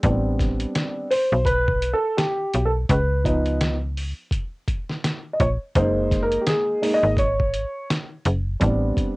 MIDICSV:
0, 0, Header, 1, 4, 480
1, 0, Start_track
1, 0, Tempo, 714286
1, 24, Time_signature, 4, 2, 24, 8
1, 6158, End_track
2, 0, Start_track
2, 0, Title_t, "Grand piano"
2, 0, Program_c, 0, 0
2, 20, Note_on_c, 0, 55, 54
2, 22, Note_on_c, 0, 59, 48
2, 25, Note_on_c, 0, 60, 51
2, 27, Note_on_c, 0, 62, 58
2, 715, Note_off_c, 0, 55, 0
2, 716, Note_off_c, 0, 59, 0
2, 718, Note_off_c, 0, 60, 0
2, 719, Note_off_c, 0, 62, 0
2, 743, Note_on_c, 0, 72, 97
2, 967, Note_off_c, 0, 72, 0
2, 977, Note_on_c, 0, 71, 90
2, 1278, Note_off_c, 0, 71, 0
2, 1300, Note_on_c, 0, 69, 85
2, 1460, Note_on_c, 0, 67, 81
2, 1467, Note_off_c, 0, 69, 0
2, 1760, Note_off_c, 0, 67, 0
2, 1784, Note_on_c, 0, 69, 77
2, 1820, Note_off_c, 0, 69, 0
2, 1947, Note_on_c, 0, 71, 77
2, 2179, Note_on_c, 0, 53, 50
2, 2186, Note_on_c, 0, 59, 48
2, 2187, Note_on_c, 0, 63, 58
2, 2399, Note_off_c, 0, 71, 0
2, 2517, Note_off_c, 0, 53, 0
2, 2520, Note_off_c, 0, 59, 0
2, 2521, Note_off_c, 0, 63, 0
2, 3584, Note_on_c, 0, 75, 60
2, 3624, Note_off_c, 0, 75, 0
2, 3628, Note_on_c, 0, 73, 82
2, 3682, Note_off_c, 0, 73, 0
2, 3865, Note_on_c, 0, 56, 58
2, 3870, Note_on_c, 0, 58, 48
2, 3870, Note_on_c, 0, 72, 84
2, 3876, Note_on_c, 0, 63, 61
2, 4165, Note_off_c, 0, 72, 0
2, 4184, Note_on_c, 0, 70, 79
2, 4309, Note_off_c, 0, 70, 0
2, 4309, Note_on_c, 0, 67, 56
2, 4345, Note_on_c, 0, 68, 84
2, 4346, Note_off_c, 0, 67, 0
2, 4558, Note_off_c, 0, 56, 0
2, 4560, Note_off_c, 0, 58, 0
2, 4563, Note_off_c, 0, 63, 0
2, 4581, Note_on_c, 0, 56, 49
2, 4585, Note_on_c, 0, 58, 45
2, 4586, Note_on_c, 0, 63, 60
2, 4664, Note_on_c, 0, 75, 102
2, 4674, Note_off_c, 0, 68, 0
2, 4798, Note_off_c, 0, 56, 0
2, 4801, Note_off_c, 0, 58, 0
2, 4801, Note_off_c, 0, 63, 0
2, 4813, Note_off_c, 0, 75, 0
2, 4829, Note_on_c, 0, 73, 84
2, 5280, Note_off_c, 0, 73, 0
2, 5778, Note_on_c, 0, 55, 55
2, 5782, Note_on_c, 0, 59, 49
2, 5784, Note_on_c, 0, 60, 49
2, 5787, Note_on_c, 0, 62, 62
2, 6116, Note_off_c, 0, 55, 0
2, 6118, Note_off_c, 0, 59, 0
2, 6119, Note_off_c, 0, 60, 0
2, 6120, Note_off_c, 0, 62, 0
2, 6158, End_track
3, 0, Start_track
3, 0, Title_t, "FM bass"
3, 0, Program_c, 1, 39
3, 22, Note_on_c, 1, 33, 105
3, 443, Note_off_c, 1, 33, 0
3, 888, Note_on_c, 1, 35, 88
3, 1307, Note_off_c, 1, 35, 0
3, 1709, Note_on_c, 1, 35, 76
3, 1917, Note_off_c, 1, 35, 0
3, 1945, Note_on_c, 1, 37, 108
3, 2778, Note_off_c, 1, 37, 0
3, 3628, Note_on_c, 1, 34, 87
3, 3750, Note_off_c, 1, 34, 0
3, 3867, Note_on_c, 1, 30, 99
3, 4286, Note_off_c, 1, 30, 0
3, 4725, Note_on_c, 1, 32, 84
3, 5145, Note_off_c, 1, 32, 0
3, 5548, Note_on_c, 1, 30, 95
3, 5756, Note_off_c, 1, 30, 0
3, 5787, Note_on_c, 1, 33, 105
3, 5996, Note_off_c, 1, 33, 0
3, 6158, End_track
4, 0, Start_track
4, 0, Title_t, "Drums"
4, 21, Note_on_c, 9, 36, 101
4, 21, Note_on_c, 9, 42, 91
4, 88, Note_off_c, 9, 42, 0
4, 89, Note_off_c, 9, 36, 0
4, 265, Note_on_c, 9, 36, 86
4, 269, Note_on_c, 9, 38, 35
4, 272, Note_on_c, 9, 42, 72
4, 332, Note_off_c, 9, 36, 0
4, 336, Note_off_c, 9, 38, 0
4, 339, Note_off_c, 9, 42, 0
4, 403, Note_on_c, 9, 42, 52
4, 470, Note_off_c, 9, 42, 0
4, 506, Note_on_c, 9, 42, 88
4, 508, Note_on_c, 9, 38, 109
4, 573, Note_off_c, 9, 42, 0
4, 575, Note_off_c, 9, 38, 0
4, 749, Note_on_c, 9, 46, 54
4, 816, Note_off_c, 9, 46, 0
4, 974, Note_on_c, 9, 36, 89
4, 985, Note_on_c, 9, 42, 84
4, 1041, Note_off_c, 9, 36, 0
4, 1052, Note_off_c, 9, 42, 0
4, 1129, Note_on_c, 9, 36, 89
4, 1196, Note_off_c, 9, 36, 0
4, 1224, Note_on_c, 9, 42, 71
4, 1291, Note_off_c, 9, 42, 0
4, 1466, Note_on_c, 9, 38, 100
4, 1467, Note_on_c, 9, 42, 96
4, 1534, Note_off_c, 9, 38, 0
4, 1534, Note_off_c, 9, 42, 0
4, 1704, Note_on_c, 9, 42, 68
4, 1771, Note_off_c, 9, 42, 0
4, 1943, Note_on_c, 9, 36, 98
4, 1945, Note_on_c, 9, 42, 100
4, 2011, Note_off_c, 9, 36, 0
4, 2012, Note_off_c, 9, 42, 0
4, 2186, Note_on_c, 9, 36, 83
4, 2191, Note_on_c, 9, 42, 72
4, 2253, Note_off_c, 9, 36, 0
4, 2258, Note_off_c, 9, 42, 0
4, 2324, Note_on_c, 9, 42, 49
4, 2391, Note_off_c, 9, 42, 0
4, 2425, Note_on_c, 9, 42, 85
4, 2427, Note_on_c, 9, 38, 102
4, 2492, Note_off_c, 9, 42, 0
4, 2494, Note_off_c, 9, 38, 0
4, 2670, Note_on_c, 9, 46, 52
4, 2738, Note_off_c, 9, 46, 0
4, 2896, Note_on_c, 9, 36, 86
4, 2905, Note_on_c, 9, 42, 85
4, 2964, Note_off_c, 9, 36, 0
4, 2973, Note_off_c, 9, 42, 0
4, 3143, Note_on_c, 9, 36, 76
4, 3145, Note_on_c, 9, 42, 70
4, 3210, Note_off_c, 9, 36, 0
4, 3213, Note_off_c, 9, 42, 0
4, 3290, Note_on_c, 9, 38, 36
4, 3357, Note_off_c, 9, 38, 0
4, 3388, Note_on_c, 9, 38, 99
4, 3389, Note_on_c, 9, 42, 87
4, 3456, Note_off_c, 9, 38, 0
4, 3456, Note_off_c, 9, 42, 0
4, 3627, Note_on_c, 9, 36, 88
4, 3627, Note_on_c, 9, 42, 70
4, 3695, Note_off_c, 9, 36, 0
4, 3695, Note_off_c, 9, 42, 0
4, 3865, Note_on_c, 9, 36, 96
4, 3866, Note_on_c, 9, 42, 98
4, 3933, Note_off_c, 9, 36, 0
4, 3933, Note_off_c, 9, 42, 0
4, 4108, Note_on_c, 9, 36, 93
4, 4110, Note_on_c, 9, 38, 35
4, 4113, Note_on_c, 9, 42, 69
4, 4175, Note_off_c, 9, 36, 0
4, 4177, Note_off_c, 9, 38, 0
4, 4180, Note_off_c, 9, 42, 0
4, 4245, Note_on_c, 9, 42, 50
4, 4312, Note_off_c, 9, 42, 0
4, 4345, Note_on_c, 9, 42, 90
4, 4347, Note_on_c, 9, 38, 110
4, 4412, Note_off_c, 9, 42, 0
4, 4414, Note_off_c, 9, 38, 0
4, 4590, Note_on_c, 9, 46, 53
4, 4657, Note_off_c, 9, 46, 0
4, 4817, Note_on_c, 9, 36, 93
4, 4827, Note_on_c, 9, 42, 78
4, 4884, Note_off_c, 9, 36, 0
4, 4894, Note_off_c, 9, 42, 0
4, 4972, Note_on_c, 9, 36, 83
4, 5039, Note_off_c, 9, 36, 0
4, 5066, Note_on_c, 9, 42, 70
4, 5133, Note_off_c, 9, 42, 0
4, 5312, Note_on_c, 9, 38, 103
4, 5312, Note_on_c, 9, 42, 94
4, 5379, Note_off_c, 9, 38, 0
4, 5379, Note_off_c, 9, 42, 0
4, 5546, Note_on_c, 9, 42, 73
4, 5614, Note_off_c, 9, 42, 0
4, 5785, Note_on_c, 9, 36, 100
4, 5787, Note_on_c, 9, 42, 89
4, 5853, Note_off_c, 9, 36, 0
4, 5854, Note_off_c, 9, 42, 0
4, 6028, Note_on_c, 9, 36, 89
4, 6033, Note_on_c, 9, 42, 72
4, 6095, Note_off_c, 9, 36, 0
4, 6100, Note_off_c, 9, 42, 0
4, 6158, End_track
0, 0, End_of_file